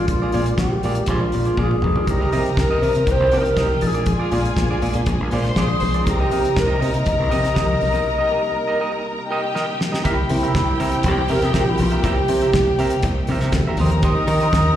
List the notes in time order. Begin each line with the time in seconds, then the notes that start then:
Already playing: G#3 A#3 D4
0.08 A#1 F4, muted clean electric guitar stroke, kick, closed hi-hat, muted conga
0.22 F4 G#4 D5
0.32 A#2 F4 G#4 D5, open hi-hat, muted conga
0.46 muted clean electric guitar stroke, closed hi-hat
0.58 A#1 G4, muted clean electric guitar stroke, kick, snare, closed hi-hat, high conga
0.72 muted clean electric guitar stroke
0.83 A#2 F4 G#4 D5, open hi-hat
0.95 muted clean electric guitar stroke, closed hi-hat
1.06 A#1 F4 G#4, kick, closed hi-hat, muted conga, low conga
1.11 D5
1.22 muted clean electric guitar stroke
1.32 A#2, muted clean electric guitar stroke, open hi-hat, muted conga, low conga
1.45 F4 G#4 D5, closed hi-hat
1.57 A#2 F4 G#4 D5, kick, high tom, high conga
1.71 muted clean electric guitar stroke, mid tom
1.82 B1, muted clean electric guitar stroke, mid tom, high conga
1.96 F4 G#4 D5, floor tom
2.07 C2 C3 G3 A#3 D#4 G4 A#4 A#5, kick, closed hi-hat, muted conga
2.20 G4 A#4 D#5
2.32 C3 G4 A#4 D#5, open hi-hat, muted conga
2.46 closed hi-hat
2.57 C2 A#4, muted clean electric guitar stroke, kick, snare, closed hi-hat, high conga
2.71 G4 A#4 D#5
2.82 C3 G4 A#4 D#5, open hi-hat
2.95 C3, closed hi-hat
3.07 C2 G4 G5, muted clean electric guitar stroke, kick, closed hi-hat
3.11 C5
3.20 C2, muted clean electric guitar stroke
3.32 C3 G4 A#4 D#5, open hi-hat, muted conga, low conga
3.37 A#4
3.45 muted clean electric guitar stroke, closed hi-hat
3.56 C2 G4 A#4 D#5, kick, snare, closed hi-hat, high conga
3.70 muted clean electric guitar stroke, high conga
3.81 A#1 G#3 A#3 D4 G#4 G#5, muted clean electric guitar stroke, open hi-hat, high conga
3.86 G#4
3.94 F4 G#4 D5, closed hi-hat
4.06 muted clean electric guitar stroke, kick, closed hi-hat, muted conga
4.11 F4
4.19 F4 G#4 D5
4.31 A#2 F4 G#4 D5, open hi-hat, muted conga
4.45 closed hi-hat
4.57 A#1, muted clean electric guitar stroke, kick, snare, closed hi-hat, high conga
4.71 F4 G#4 D5
4.82 A#2 F4 G#4 D5, open hi-hat
4.94 A#2, closed hi-hat
5.06 A#1, muted clean electric guitar stroke, kick, closed hi-hat, low conga
5.20 A#1, muted clean electric guitar stroke
5.31 A#2 F4 G#4 C5 D5 C6, open hi-hat, muted conga, low conga
5.44 muted clean electric guitar stroke, snare, closed hi-hat
5.56 A#1 F4 G#4 D5, kick, snare, closed hi-hat, high conga
5.70 muted clean electric guitar stroke, high conga
5.80 B1, muted clean electric guitar stroke, open hi-hat, high conga
5.94 F4 G#4 D5, closed hi-hat
6.06 C2 C3 G3 D#4 G4 A#4 A#5, muted clean electric guitar stroke, kick, closed hi-hat, muted conga
6.20 G4 A#4 D#5
6.31 C3 G4 A#4 D#5, open hi-hat, muted conga
6.44 muted clean electric guitar stroke, closed hi-hat
6.55 C2, muted clean electric guitar stroke, kick, snare, closed hi-hat, high conga
6.59 A#4
6.67 G4 A#4 D#5
6.80 C3 G4 A#4 D#5, open hi-hat
6.84 D#5
6.93 C3, muted clean electric guitar stroke, closed hi-hat
7.06 C2, muted clean electric guitar stroke, kick, closed hi-hat, muted conga
7.18 C2, muted clean electric guitar stroke
7.29 C3 G4 A#4 D#5, open hi-hat
7.33 muted conga, low conga
7.43 muted clean electric guitar stroke, snare, closed hi-hat
7.54 C2 G4 A#4 D#5, kick, snare, closed hi-hat, high conga
7.69 muted clean electric guitar stroke, high conga
7.81 B1, muted clean electric guitar stroke, open hi-hat, high conga
7.93 G4 A#4 D#5, closed hi-hat
8.06 muted clean electric guitar stroke
8.18 G4 A#4 D#5
8.30 G4 A#4 D#5
8.44 muted clean electric guitar stroke
8.56 muted clean electric guitar stroke
8.67 G4 A#4 D#5
8.80 G4 A#4 D#5
8.94 muted clean electric guitar stroke
9.06 muted clean electric guitar stroke
9.19 muted clean electric guitar stroke
9.30 G4 A#4 D#5 G5
9.43 muted clean electric guitar stroke
9.54 G4 A#4 D#5, snare
9.67 muted clean electric guitar stroke
9.80 muted clean electric guitar stroke, snare
9.92 G4 A#4 D#5, snare
10.04 C2 C3 G3 A#3 E4 G4 A#4 E5 G5, kick, closed hi-hat, muted conga
10.17 muted clean electric guitar stroke
10.29 C3, muted clean electric guitar stroke, open hi-hat, muted conga
10.33 E4
10.43 G4 A#4 E5, closed hi-hat
10.54 C2, muted clean electric guitar stroke, kick, snare, closed hi-hat, high conga
10.68 muted clean electric guitar stroke
10.79 C3 G4 A#4 E5, open hi-hat
10.92 muted clean electric guitar stroke, closed hi-hat
11.03 C2 G4, muted clean electric guitar stroke, kick, closed hi-hat, muted conga, low conga
11.17 muted clean electric guitar stroke
11.28 C3 G4 A#4 E5, open hi-hat, muted conga, low conga
11.42 C3 G4 G#4 A#4 E5, snare, closed hi-hat
11.54 A#1 G4 A#4 E5, kick, snare, closed hi-hat, high conga
11.67 E4, muted clean electric guitar stroke
11.78 B1 F4, muted clean electric guitar stroke, open hi-hat, high conga
11.91 G4 A#4 E5, closed hi-hat
12.03 C2 G4 A#4 E5, kick, closed hi-hat, muted conga
12.17 muted clean electric guitar stroke
12.28 C3, muted clean electric guitar stroke, open hi-hat, muted conga
12.42 G4 A#4 E5, closed hi-hat
12.54 C2, kick, snare, closed hi-hat, high conga
12.68 muted clean electric guitar stroke
12.79 C3 G4 A#4 E5, open hi-hat
12.90 muted clean electric guitar stroke, closed hi-hat
13.03 C2, muted clean electric guitar stroke, kick, closed hi-hat, muted conga
13.18 muted clean electric guitar stroke
13.27 C3 G4 A#4, open hi-hat, muted conga, low conga
13.32 E5
13.41 C3 G4 A#4 E5, snare, closed hi-hat
13.52 D2, muted clean electric guitar stroke, kick, snare, closed hi-hat, high conga
13.67 G4 A#4 E5
13.77 D#2 D#3 C4 G4 A#4 C5 A#5, open hi-hat, high conga
13.81 D#5
13.90 muted clean electric guitar stroke, closed hi-hat
14.03 D#4 G4 C5 D#5, kick, closed hi-hat, muted conga
14.17 muted clean electric guitar stroke
14.27 D#3 D#4, muted clean electric guitar stroke, open hi-hat, muted conga
14.40 G4 C5 D#5, closed hi-hat
14.53 D#2, kick, snare, closed hi-hat, high conga
14.66 muted clean electric guitar stroke